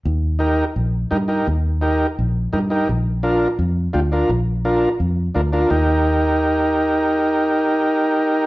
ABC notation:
X:1
M:4/4
L:1/8
Q:1/4=170
K:Eb
V:1 name="Transistor combo organ"
z2 [EGB] z3 [EGB] [EGB] | z2 [EGB] z3 [EGB] [EGB] | z2 [DFB] z3 [DFG] [DFB] | z2 [DFB] z3 [DFB] [DFB] |
[EGB]8- | [EGB]8 |]
V:2 name="Fingered electric bass" clef=bass
E,,4 B,,,2 G,,2 | E,,4 B,,,2 G,,2 | B,,,4 F,,2 D,,2 | B,,,4 F,,2 D,,2 |
E,,8- | E,,8 |]